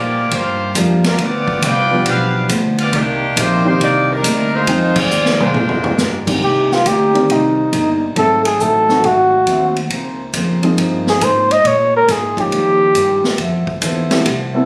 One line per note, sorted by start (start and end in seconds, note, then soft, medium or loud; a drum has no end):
0.00 0.18 G2 medium
0.00 0.30 A#2 medium
0.00 0.19 F3 medium
0.00 0.19 A#3 medium
0.00 0.32 A#3 medium
0.00 0.19 D4 medium
0.00 0.33 F4 medium
0.00 0.33 G4 medium
0.00 0.33 D5 loud
0.31 0.62 G2 soft
0.31 0.74 G2 medium
0.31 0.62 F3 soft
0.31 0.63 A#3 soft
0.31 0.76 A#3 medium
0.31 0.63 D4 soft
0.31 0.76 F4 medium
0.31 0.76 G4 medium
0.31 0.76 C5 medium
0.31 kick soft
0.31 ride medium
0.75 1.17 F2 medium
0.75 1.05 G2 medium
0.75 1.01 F3 medium
0.75 1.06 F3 medium
0.75 1.02 G3 medium
0.75 1.06 A#3 medium
0.75 1.02 A#3 medium
0.75 1.06 D4 medium
0.75 1.02 D4 medium
0.75 1.02 F4 medium
0.75 kick soft
0.75 hi-hat pedal medium
0.75 ride medium
1.04 1.19 G3 medium
1.04 1.19 D4 medium
1.04 1.20 F4 medium
1.04 1.19 A#4 medium
1.04 snare soft
1.04 ride soft
1.18 1.61 D2 medium
1.18 1.49 G2 soft
1.18 1.50 F3 soft
1.18 1.50 B3 medium
1.18 1.64 B3 medium
1.18 1.50 D4 soft
1.18 1.64 F4 medium
1.18 1.64 G4 medium
1.18 1.63 D5 loud
1.18 kick soft
1.18 ride medium
1.48 kick medium
1.62 2.04 C2 medium
1.62 1.93 G2 medium
1.62 1.93 F3 medium
1.62 1.93 B3 medium
1.62 1.93 D4 medium
1.62 2.07 F4 loud
1.62 2.07 B4 medium
1.62 2.07 D5 medium
1.62 2.07 G5 loud
1.62 kick soft
1.62 hi-hat pedal medium
1.62 ride medium
1.91 2.46 F3 medium
1.91 2.47 G3 medium
1.91 2.47 B3 medium
1.91 2.47 D4 medium
1.91 2.47 F4 medium
2.05 2.48 B1 medium
2.05 2.36 G2 soft
2.05 2.37 F3 soft
2.05 2.37 B3 soft
2.05 2.37 D4 soft
2.05 2.48 D4 medium
2.05 2.48 G4 medium
2.05 2.48 B4 medium
2.05 2.48 F5 medium
2.05 kick soft
2.05 ride medium
2.49 2.91 D2 loud
2.49 2.80 G2 medium
2.49 2.80 F3 medium
2.49 2.81 B3 medium
2.49 2.81 D4 medium
2.49 kick soft
2.49 hi-hat pedal medium
2.49 ride medium
2.78 2.93 B3 medium
2.78 2.93 F4 medium
2.78 2.93 G4 medium
2.78 2.93 D5 medium
2.78 ride soft
2.92 3.35 C2 medium
2.92 3.23 C3 soft
2.92 3.24 D#3 medium
2.92 3.37 D#3 medium
2.92 3.24 A#3 soft
2.92 3.36 A#3 medium
2.92 3.37 D4 medium
2.92 3.24 D4 soft
2.92 3.37 G4 medium
2.92 kick soft
2.92 ride medium
3.36 3.79 A#1 medium
3.36 3.67 C3 medium
3.36 3.68 D#3 medium
3.36 3.65 A#3 medium
3.36 3.68 A#3 medium
3.36 3.68 D4 medium
3.36 3.65 D#4 medium
3.36 3.65 G4 medium
3.36 3.65 C5 loud
3.36 kick soft
3.36 hi-hat pedal medium
3.36 ride medium
3.65 4.20 D#3 medium
3.65 4.21 A#3 medium
3.65 3.80 A#3 medium
3.65 4.21 C4 medium
3.65 4.21 D4 medium
3.65 3.80 D#4 medium
3.65 4.21 G4 medium
3.65 3.79 G4 medium
3.65 3.80 C5 medium
3.80 4.22 C2 medium
3.80 4.11 C3 soft
3.80 4.11 D#3 soft
3.80 4.08 A#3 medium
3.80 4.12 A#3 soft
3.80 4.12 D4 soft
3.80 4.08 D#4 medium
3.80 4.08 G4 medium
3.80 4.08 D5 loud
3.80 kick soft
3.80 ride medium
4.11 4.54 G3 medium
4.11 4.54 D4 medium
4.11 4.53 D#4 medium
4.11 4.54 A#4 loud
4.23 4.66 D2 medium
4.23 4.55 C3 medium
4.23 4.55 D#3 medium
4.23 4.55 A#3 medium
4.23 4.55 D4 medium
4.23 kick soft
4.23 hi-hat pedal medium
4.23 ride medium
4.54 4.98 G#3 medium
4.54 4.97 D#4 medium
4.54 4.97 F4 medium
4.54 4.97 C5 medium
4.67 5.09 F2 medium
4.67 4.98 F2 soft
4.67 4.98 D#3 soft
4.67 5.34 F3 medium
4.67 5.34 G#3 soft
4.67 4.99 G#3 soft
4.67 5.35 C4 medium
4.67 4.99 C4 soft
4.67 5.35 D#4 medium
4.67 5.35 G5 medium
4.67 kick soft
4.67 ride medium
4.96 5.41 C4 medium
4.96 5.39 F4 medium
4.96 5.40 G#4 medium
4.96 5.41 D5 loud
4.96 kick medium
4.96 crash medium
5.10 5.53 D#2 medium
5.10 5.42 F2 medium
5.10 5.42 D#3 medium
5.10 5.42 G#3 medium
5.10 5.42 C4 medium
5.10 hi-hat pedal medium
5.25 snare medium
5.40 6.23 G#3 medium
5.40 6.24 D4 medium
5.40 6.23 F4 medium
5.40 6.24 C5 medium
5.40 mid tom medium
5.54 5.96 A#2 medium
5.54 5.85 A#2 soft
5.54 5.86 G#3 soft
5.54 5.86 D4 soft
5.54 5.86 G4 soft
5.54 floor tom medium
5.69 floor tom medium
5.84 floor tom medium
5.97 6.40 G2 medium
5.97 6.29 A#2 medium
5.97 6.29 G#3 medium
5.97 6.29 D4 medium
5.97 6.30 G4 medium
5.97 snare medium
5.97 hi-hat pedal medium
6.27 6.40 D#3 medium
6.27 6.40 A#3 medium
6.27 6.41 C4 medium
6.27 6.41 D4 medium
6.27 6.41 G4 medium
6.27 kick medium
6.27 crash medium
6.42 6.84 C2 medium
6.42 6.72 C3 soft
6.42 6.73 G3 soft
6.42 6.73 A#3 soft
6.42 6.73 D#4 medium
6.42 6.75 G4 medium
6.42 kick soft
6.71 6.89 F4 medium
6.71 snare soft
6.85 7.27 D2 medium
6.85 7.16 C3 medium
6.85 7.16 G3 medium
6.85 7.17 A#3 medium
6.85 7.17 D#4 medium
6.85 7.33 G4 medium
6.85 kick soft
6.85 hi-hat pedal medium
6.85 ride medium
7.14 7.69 D#3 medium
7.14 7.69 A#3 medium
7.14 7.70 C4 medium
7.14 7.70 G4 medium
7.14 7.70 D5 medium
7.14 ride soft
7.29 7.71 C2 medium
7.29 7.59 C3 soft
7.29 7.60 G3 soft
7.29 7.60 A#3 soft
7.29 7.60 D#4 soft
7.29 8.03 D#4 medium
7.29 kick soft
7.29 ride medium
7.73 8.15 G1 medium
7.73 8.03 C3 medium
7.73 8.03 G3 medium
7.73 8.04 A#3 medium
7.73 8.04 D#4 medium
7.73 kick soft
7.73 hi-hat pedal soft
7.73 ride medium
8.15 8.58 G#1 medium
8.15 8.47 G#2 soft
8.15 8.83 F#3 medium
8.15 8.47 F#3 soft
8.15 8.83 A3 soft
8.15 8.47 A3 soft
8.15 8.83 C4 soft
8.15 8.48 C4 medium
8.15 8.83 D#4 soft
8.15 8.83 G#4 medium
8.15 8.44 A4 medium
8.15 kick soft
8.15 ride medium
8.45 8.62 G#4 medium
8.45 ride medium
8.59 9.02 A1 medium
8.59 8.90 G#2 medium
8.59 8.90 F#3 medium
8.59 8.91 A3 medium
8.59 8.91 C4 medium
8.59 9.07 A4 medium
8.59 kick soft
8.59 hi-hat pedal medium
8.88 9.02 F#3 medium
8.88 9.02 A3 medium
8.88 9.02 C4 medium
8.88 9.02 D#4 medium
8.88 9.02 F#4 medium
8.88 snare soft
9.03 9.45 G#1 medium
9.03 9.34 G#2 soft
9.03 9.34 F#3 soft
9.03 9.34 A3 soft
9.03 9.35 C4 soft
9.03 9.77 F#4 medium
9.03 kick soft
9.03 ride medium
9.47 9.89 D#2 medium
9.47 9.77 G#2 medium
9.47 9.78 F#3 medium
9.47 9.78 A3 medium
9.47 9.78 C4 medium
9.47 kick soft
9.47 hi-hat pedal soft
9.47 ride medium
9.76 ride soft
9.90 10.32 C#2 medium
9.90 10.21 C#3 medium
9.90 10.21 F3 soft
9.90 10.22 A#3 medium
9.90 10.22 C4 medium
9.90 kick soft
9.90 ride medium
10.33 10.76 F2 medium
10.33 10.64 C#3 medium
10.33 10.65 F3 medium
10.33 10.65 A#3 medium
10.33 10.65 C4 medium
10.33 kick soft
10.33 hi-hat pedal medium
10.33 ride medium
10.63 11.18 F3 medium
10.63 11.18 A#3 medium
10.63 11.18 C4 medium
10.63 11.19 D#4 medium
10.63 11.19 G#4 medium
10.63 ride soft
10.77 11.20 G2 medium
10.77 11.08 C#3 soft
10.77 11.08 F3 soft
10.77 11.08 A#3 soft
10.77 11.09 C4 medium
10.77 kick soft
10.77 ride medium
11.07 11.25 G#4 medium
11.07 snare soft
11.21 11.63 G#2 medium
11.21 11.51 C#3 medium
11.21 11.52 F3 medium
11.21 11.52 A#3 medium
11.21 11.52 C4 medium
11.21 11.54 C5 medium
11.21 kick soft
11.21 hi-hat pedal medium
11.21 ride medium
11.51 11.68 D#5 loud
11.51 ride soft
11.64 11.95 A#2 soft
11.64 12.07 A#2 medium
11.64 11.95 G#3 soft
11.64 11.96 C#4 soft
11.64 11.96 F4 soft
11.64 11.95 C#5 medium
11.64 kick soft
11.64 ride medium
11.96 12.13 A#4 medium
12.08 12.50 G#2 medium
12.08 12.39 A#2 medium
12.08 12.39 G#3 medium
12.08 12.39 C#4 medium
12.08 12.39 F4 medium
12.08 12.39 G#4 medium
12.08 kick soft
12.08 snare soft
12.08 hi-hat pedal medium
12.08 ride medium
12.37 12.92 F3 medium
12.37 12.92 A#3 medium
12.37 12.92 C#4 medium
12.37 12.93 D#4 medium
12.37 12.93 G4 medium
12.37 kick soft
12.37 ride soft
12.41 13.36 G4 medium
12.51 12.94 D#2 medium
12.51 12.82 D#3 soft
12.51 12.82 G3 soft
12.51 12.83 C#4 soft
12.51 12.83 F4 soft
12.51 kick soft
12.51 ride medium
12.95 13.22 G2 medium
12.95 13.26 D#3 medium
12.95 13.26 G3 medium
12.95 13.26 C#4 medium
12.95 13.26 F4 medium
12.95 kick soft
12.95 hi-hat pedal medium
12.95 ride medium
13.24 snare medium
13.38 13.65 F2 medium
13.38 13.69 F3 medium
13.38 13.70 B3 medium
13.38 13.70 E4 medium
13.38 13.70 A4 medium
13.38 kick soft
13.38 ride medium
13.67 kick medium
13.81 14.24 E2 medium
13.81 14.13 F3 medium
13.81 14.13 B3 medium
13.81 14.13 E4 medium
13.81 14.13 A4 medium
13.81 kick soft
13.81 hi-hat pedal medium
13.81 ride medium
14.11 14.24 A3 medium
14.11 14.24 B3 medium
14.11 14.24 C4 medium
14.11 14.25 E4 medium
14.11 14.25 G4 medium
14.11 snare medium
14.11 ride soft
14.25 14.65 C2 medium
14.25 14.56 F3 soft
14.25 14.56 B3 soft
14.25 14.57 E4 medium
14.25 14.57 A4 soft
14.25 kick soft
14.25 ride medium
14.54 14.65 A3 medium
14.54 14.65 B3 medium
14.54 14.65 C4 medium
14.54 14.65 E4 medium
14.54 14.65 A4 medium